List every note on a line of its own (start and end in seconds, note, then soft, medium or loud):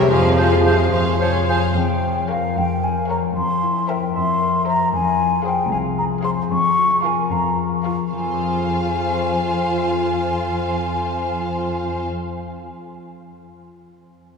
0.00 1.76 F3 soft
0.00 0.10 G3 medium
0.00 1.72 G#3 soft
0.00 2.02 F4 soft
0.00 0.10 A#4 soft
0.00 0.10 C#5 soft
0.00 0.10 E5 soft
0.07 0.84 F2 medium
0.07 0.91 F3 medium
0.07 0.92 F3 soft
0.07 0.90 F4 soft
0.07 0.37 G#4 soft
0.07 1.76 C5 soft
0.07 0.37 C5 soft
0.07 0.37 F5 soft
0.12 0.93 F5 soft
0.38 0.48 F3 soft
0.38 0.48 G#4 soft
0.38 0.65 G#4 soft
0.38 0.48 C5 soft
0.38 0.65 C5 soft
0.38 0.65 F5 soft
0.65 0.76 F3 soft
0.65 0.75 G#4 soft
0.65 0.92 G#4 soft
0.65 0.76 C5 soft
0.65 0.92 C5 soft
0.65 0.91 F5 soft
0.92 1.66 F2 soft
0.92 1.20 G#4 soft
0.92 1.05 C5 soft
0.92 1.19 C5 soft
0.92 1.18 F5 soft
0.92 1.45 C6 medium
1.20 1.31 F3 soft
1.20 1.48 G#4 soft
1.20 1.30 C5 soft
1.20 1.48 C5 soft
1.20 1.47 C#5 soft
1.20 1.47 F5 soft
1.48 1.59 F3 soft
1.48 1.75 G#4 soft
1.48 1.60 C5 soft
1.48 1.59 C5 soft
1.48 1.75 C5 soft
1.48 1.75 F5 soft
1.48 1.55 G#5 medium
1.76 2.40 F2 medium
1.76 3.35 F3 soft
1.76 2.28 G5 medium
2.03 3.38 F4 soft
2.29 2.50 A#4 soft
2.29 2.82 A#4 soft
2.29 2.49 C#5 soft
2.29 2.49 F5 soft
2.29 2.60 F5 medium
2.56 3.20 F2 medium
2.56 3.38 F5 soft
2.56 2.85 G5 medium
2.84 3.88 A#4 soft
2.84 3.10 G#5 medium
3.08 3.29 A#4 soft
3.08 3.29 C#5 soft
3.08 3.38 C#5 soft
3.08 3.28 F5 soft
3.08 3.16 A#5 medium
3.36 3.99 F2 soft
3.36 4.92 F3 soft
3.36 3.91 C6 medium
3.63 4.95 E4 soft
3.88 4.08 A#4 soft
3.88 4.40 A#4 soft
3.88 4.08 C5 soft
3.88 4.08 E5 soft
3.88 4.14 G5 medium
4.15 4.77 F2 soft
4.15 4.95 E5 soft
4.15 4.66 C6 medium
4.42 4.95 A#4 soft
4.67 4.86 A#4 soft
4.67 4.86 C5 soft
4.67 6.23 C5 soft
4.67 4.87 E5 soft
4.67 4.93 A#5 medium
4.93 5.56 F2 medium
4.93 6.50 F3 soft
4.93 5.44 G#5 medium
5.19 6.77 F4 soft
5.44 5.64 G#4 soft
5.44 5.97 G#4 soft
5.44 5.64 C5 soft
5.44 5.65 F5 soft
5.44 5.71 G5 medium
5.71 6.34 C2 medium
5.71 7.30 F5 soft
5.71 5.78 G#5 medium
5.98 6.53 G#4 soft
5.98 6.04 A#5 medium
6.23 6.43 G#4 soft
6.23 6.43 C5 soft
6.23 6.52 C5 soft
6.23 6.44 F5 soft
6.23 6.30 C6 medium
6.51 7.15 F2 medium
6.51 8.11 F3 soft
6.51 7.03 C#6 medium
6.78 7.85 F4 soft
7.03 7.23 F4 soft
7.03 7.24 A#4 soft
7.03 7.57 A#4 soft
7.03 7.24 F5 soft
7.03 7.34 G#5 medium
7.31 7.96 F2 medium
7.31 8.39 F5 soft
7.31 7.58 A#5 medium
7.58 8.14 A#4 soft
7.84 8.06 F4 soft
7.84 8.25 F4 soft
7.84 8.05 A#4 soft
7.84 8.04 F5 soft
8.11 12.06 F2 soft
8.11 12.09 F3 soft
8.11 12.06 F4 soft
8.11 12.06 C5 soft
8.11 12.06 F5 soft
8.11 12.07 G#5 soft
8.19 12.16 C4 soft
8.26 12.23 F4 soft
8.33 12.30 G#4 soft
8.40 12.37 F5 soft